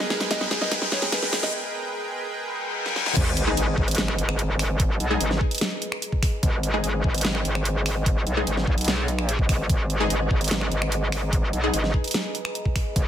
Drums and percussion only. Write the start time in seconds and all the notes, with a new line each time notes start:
0.00 snare
0.10 snare
0.21 snare, closed hi-hat
0.31 snare, closed hi-hat
0.41 snare
0.51 snare, closed hi-hat
0.61 snare
0.72 snare, closed hi-hat
0.82 snare
0.92 snare
1.02 snare, closed hi-hat
1.12 snare, closed hi-hat
1.23 snare
1.33 snare, open hi-hat
1.43 snare, closed hi-hat
2.86 snare
2.96 snare
3.06 snare
3.16 kick, closed hi-hat, crash
3.37 closed hi-hat
3.57 closed hi-hat
3.78 kick
3.88 closed hi-hat
3.91 closed hi-hat
3.95 snare, closed hi-hat
3.98 closed hi-hat
4.08 finger snap
4.18 closed hi-hat
4.29 finger snap
4.39 closed hi-hat
4.59 finger snap, open hi-hat
4.80 kick, closed hi-hat
5.00 closed hi-hat
5.21 closed hi-hat
5.31 snare
5.41 kick
5.51 closed hi-hat
5.55 closed hi-hat
5.58 snare, closed hi-hat
5.61 closed hi-hat
5.82 closed hi-hat
5.92 finger snap
6.02 closed hi-hat
6.12 kick
6.23 finger snap, kick, open hi-hat
6.43 kick, closed hi-hat
6.63 closed hi-hat
6.84 closed hi-hat
7.04 kick
7.14 closed hi-hat
7.18 closed hi-hat
7.21 snare, closed hi-hat
7.25 closed hi-hat
7.35 finger snap
7.45 closed hi-hat
7.55 finger snap
7.65 closed hi-hat
7.86 finger snap, open hi-hat
8.06 kick, closed hi-hat
8.27 closed hi-hat
8.47 closed hi-hat
8.57 snare
8.67 kick
8.78 closed hi-hat
8.81 closed hi-hat
8.84 snare, closed hi-hat
8.88 closed hi-hat
9.08 closed hi-hat
9.19 finger snap
9.29 closed hi-hat
9.39 kick
9.49 finger snap, kick, open hi-hat
9.70 kick, closed hi-hat
9.90 closed hi-hat
10.10 closed hi-hat
10.31 kick
10.41 closed hi-hat
10.44 closed hi-hat
10.48 snare, closed hi-hat
10.51 closed hi-hat
10.61 finger snap
10.72 closed hi-hat
10.82 finger snap
10.92 closed hi-hat
11.12 finger snap, open hi-hat
11.33 kick, closed hi-hat
11.53 closed hi-hat
11.74 closed hi-hat
11.84 snare
11.94 kick
12.04 closed hi-hat
12.08 closed hi-hat
12.11 snare, closed hi-hat
12.14 closed hi-hat
12.35 closed hi-hat
12.45 finger snap
12.55 closed hi-hat
12.65 kick
12.76 finger snap, kick, open hi-hat
12.96 kick, closed hi-hat